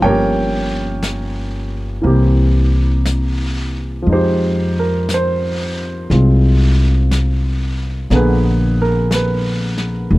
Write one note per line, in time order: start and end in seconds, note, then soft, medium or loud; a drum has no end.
0.00 1.99 G1 medium
0.00 2.01 F3 soft
0.00 2.02 A#3 soft
0.00 2.00 C#5 medium
0.00 3.01 G5 medium
0.00 brush sweep soft
0.05 2.05 C#4 soft
0.05 2.05 G4 soft
0.05 3.03 A#4 medium
1.03 brush sweep soft
1.03 snare soft
1.03 hi-hat pedal soft
2.02 4.04 C2 medium
2.02 4.06 E3 soft
2.02 4.07 A#3 soft
2.02 4.08 C4 soft
2.02 brush sweep soft
2.06 4.09 G4 soft
3.05 brush sweep soft
3.05 snare soft
3.05 hi-hat pedal soft
4.02 8.08 F3 soft
4.02 6.08 G#3 soft
4.06 6.05 F2 medium
4.06 8.12 D#4 soft
4.06 brush sweep soft
4.12 8.13 G4 soft
4.12 4.77 C5 medium
4.79 5.09 A#4 medium
5.09 brush sweep soft
5.09 snare soft
5.09 hi-hat pedal medium
5.14 5.79 C5 medium
6.10 8.07 C2 medium
6.10 8.11 G#3 soft
6.10 8.11 C4 soft
6.10 8.12 F4 soft
6.10 brush sweep soft
6.10 snare soft
7.11 brush sweep soft
7.11 snare soft
7.11 hi-hat pedal soft
8.10 10.06 A#1 medium
8.10 10.19 D3 soft
8.10 10.19 A#3 soft
8.10 10.19 B3 soft
8.10 10.19 G#4 medium
8.10 brush sweep soft
8.10 snare soft
8.15 8.79 B4 medium
8.82 9.11 A#4 medium
9.11 9.78 B4 medium
9.11 brush sweep soft
9.11 snare soft
9.11 hi-hat pedal medium
9.78 snare soft
10.10 10.19 F1 medium
10.10 brush sweep soft